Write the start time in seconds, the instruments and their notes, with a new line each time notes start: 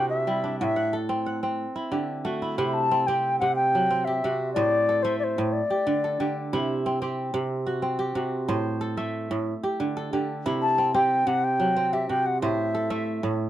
Already playing: kora C3 A3 C4 D4 E4 F#4 A4
0.09 flute E5
0.27 kora G3 E4
0.44 kora D4
0.60 kora A2, flute E5 F#5
0.76 kora F#5
0.93 kora A4
1.09 kora C4
1.26 kora F#5
1.43 kora C4
1.76 kora E4
1.92 kora D3 G4
2.25 kora A3 F#4
2.42 kora E4
2.58 kora C3 E4
2.68 flute B5
2.74 flute A5
2.91 kora C4
3.07 kora C4 G4, flute G5
3.39 kora C3, flute F#5
3.55 flute G5
3.75 kora F#3
3.90 kora C4
4.05 kora G4, flute E5
4.24 kora C3 F#4
4.53 kora A2 C5, flute D5
4.89 kora A4
5.03 kora A3 E5, flute C5
5.19 flute D5
5.24 flute C5
5.38 kora A2
5.53 flute D5
5.70 kora G4
5.87 kora D3
6.04 kora A4
6.20 kora D3 G4
6.53 kora C3 E4
6.86 kora C4
7.02 kora C4 G4
7.34 kora C3
7.66 kora F#4
7.82 kora C4
7.99 kora G4
8.15 kora C3 F#4
8.48 kora A2 C5
8.81 kora A4
8.97 kora A3 E5
9.31 kora A2
9.63 kora G4
9.80 kora D3
9.97 kora A4
10.13 kora D3 G4
10.46 kora C3 E4
10.62 flute A5
10.78 kora C4
10.94 kora C4 G4, flute G5
11.27 kora C3, flute F#5
11.44 flute G5
11.60 kora F#3
11.76 kora C4
11.93 kora G4, flute E5
12.09 kora C3 F#4, flute G5
12.26 flute F#5
12.42 kora A2 C5, flute E5
12.75 kora A4
12.90 kora A3 E5
13.23 kora A2